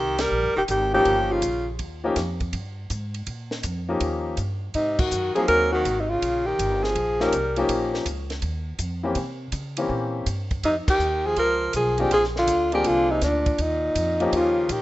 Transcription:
Already playing: upright bass C2, tenor saxophone D#3, alto saxophone G4
0.18 tenor saxophone G3, alto saxophone A#4, snare, ride
0.31 upright bass A#1
0.43 upright bass G1
0.55 upright bass D#1, tenor saxophone D#3, alto saxophone G4
0.68 upright bass G#1, tenor saxophone D#3, alto saxophone G4, kick, hi-hat pedal, ride
0.93 tenor saxophone D#3, grand piano F3 A#3 C#4 D#4 G4, alto saxophone G4
1.05 upright bass G1, kick, ride
1.32 tenor saxophone C#3, alto saxophone F4
1.42 upright bass A#1, kick, hi-hat pedal, ride
1.79 upright bass D#2, kick, ride
2.04 grand piano F3 A#3 C#4 D#4 G4
2.16 upright bass F2, kick, snare, hi-hat pedal, ride
2.40 kick, ride
2.53 upright bass G2, kick, ride
2.90 upright bass G#2, kick, hi-hat pedal, ride
3.14 ride
3.27 upright bass A#2, kick, ride
3.51 snare
3.63 upright bass F2, kick, hi-hat pedal, ride
3.89 grand piano F3 A#3 C#4 D#4 G4
4.00 upright bass D#2, kick, ride
4.37 upright bass G2, kick, hi-hat pedal, ride
4.74 upright bass G#2, tenor saxophone C3, alto saxophone D#4, kick, ride
4.99 tenor saxophone D#3, alto saxophone F#4, kick, crash
5.11 upright bass F#2, hi-hat pedal
5.35 tenor saxophone F3, grand piano F#3 A#3 C4 D#4 G#4, alto saxophone G#4, muted upright bass stroke, ride
5.48 upright bass D#2, tenor saxophone F#3, alto saxophone A#4, kick, ride
5.72 tenor saxophone D#3, alto saxophone F#4
5.85 upright bass G#1, kick, hi-hat pedal, ride
6.00 tenor saxophone C3, alto saxophone D#4
6.09 tenor saxophone C#3, alto saxophone F4
6.22 upright bass A#1, kick, ride
6.46 tenor saxophone D#3, alto saxophone G4
6.59 upright bass G1, kick, hi-hat pedal, ride
6.83 tenor saxophone F3, alto saxophone G#4, snare
6.95 upright bass A#1, kick, ride
7.20 grand piano F3 A#3 C#4 D#4 G4, tenor saxophone G3, alto saxophone A#4, snare
7.32 upright bass C2, kick, hi-hat pedal, ride
7.56 grand piano F3 A#3 C#4 D#4 G4, ride
7.69 upright bass A#1, kick, ride
7.94 snare
8.05 upright bass C#2, kick, hi-hat pedal, ride
8.30 snare, ride
8.42 upright bass D#2, kick, ride
8.79 upright bass F2, kick, hi-hat pedal, ride
9.03 grand piano E3 A#3 C4 C#4 G4
9.15 upright bass C3, kick, ride
9.52 upright bass C#3, kick, hi-hat pedal, ride
9.77 grand piano E3 A#3 C4 C#4 G4, ride
9.89 upright bass A#2, kick
10.26 upright bass G2, kick, hi-hat pedal, ride
10.51 kick, ride
10.63 upright bass F2, tenor saxophone C3, alto saxophone D#4, kick, ride
10.87 tenor saxophone D#3, alto saxophone G4, muted upright bass stroke, kick, crash
10.99 upright bass D#2, hi-hat pedal
11.25 tenor saxophone F3, alto saxophone G#4
11.36 upright bass C#2, tenor saxophone F3, alto saxophone A#4, kick, ride
11.73 upright bass B1, tenor saxophone F3, alto saxophone G#4, kick, hi-hat pedal, ride
11.98 tenor saxophone D#3, grand piano F3 A#3 C4 D4 G#4, alto saxophone G4, ride
12.11 upright bass A#1, tenor saxophone F3, alto saxophone G#4, kick, ride
12.24 snare
12.36 tenor saxophone D3, alto saxophone F4, snare
12.47 upright bass D2, kick, hi-hat pedal, ride
12.72 tenor saxophone D#3, grand piano F3 A#3 C4 D4 G#4, alto saxophone G4, ride
12.84 upright bass C2, tenor saxophone D3, alto saxophone F4, kick, ride
13.10 tenor saxophone C3, alto saxophone D#4
13.21 upright bass D2, tenor saxophone A#2, alto saxophone D4, kick, snare, hi-hat pedal, ride
13.46 kick, ride
13.58 upright bass D#2, tenor saxophone A#2, alto saxophone D#4, kick, ride
13.95 upright bass F2, kick, hi-hat pedal, ride
14.20 grand piano F3 A#3 C#4 D#4 G4, ride
14.32 upright bass D#2, tenor saxophone C#3, kick, ride
14.36 alto saxophone F4
14.69 upright bass A#2, tenor saxophone D#3, alto saxophone G4, kick, hi-hat pedal, ride

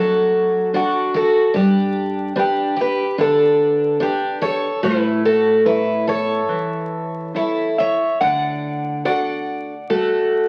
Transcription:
Already playing: upright bass A1, nylon-string guitar F#3, twelve-string acoustic guitar F#4 A4
0.73 nylon-string guitar D4 F#4 A4, twelve-string acoustic guitar D4 F#4
1.14 twelve-string acoustic guitar F#4 A4
1.54 upright bass G2, nylon-string guitar G3, twelve-string acoustic guitar D4 G4
2.36 twelve-string acoustic guitar D4 G4, nylon-string guitar D4 G4 B4
2.76 twelve-string acoustic guitar G4
2.81 twelve-string acoustic guitar B4
3.18 upright bass D2, nylon-string guitar D3, twelve-string acoustic guitar D4 A4
4.00 twelve-string acoustic guitar D4 G4, nylon-string guitar D4 G4 B4
4.42 twelve-string acoustic guitar A4 C#5
4.83 upright bass A2, nylon-string guitar A3, twelve-string acoustic guitar E4 B4
5.25 twelve-string acoustic guitar F#4 A4
5.65 nylon-string guitar E4 A4 C#5, twelve-string acoustic guitar E4 B4
6.07 twelve-string acoustic guitar A4 C#5
6.49 upright bass E2, nylon-string guitar E3
7.34 nylon-string guitar E4 A4 C#5, twelve-string acoustic guitar E4 A4
7.78 twelve-string acoustic guitar C#5 E5
8.21 upright bass D2, nylon-string guitar D3, twelve-string acoustic guitar D5 F#5
9.05 nylon-string guitar D4 F#4 A4, twelve-string acoustic guitar D5 F#5
9.90 upright bass A1, nylon-string guitar A3, twelve-string acoustic guitar F#4 A4

